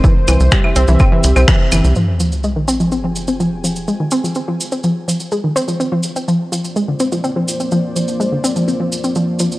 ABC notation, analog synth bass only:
X:1
M:4/4
L:1/16
Q:1/4=125
K:Fm
V:1 name="Analog synth bass" clef=bass
z2 C,, C,, z2 C,, C,, z2 C,, C,, z2 G,,, C,, | z16 | z16 | z16 |
z16 |]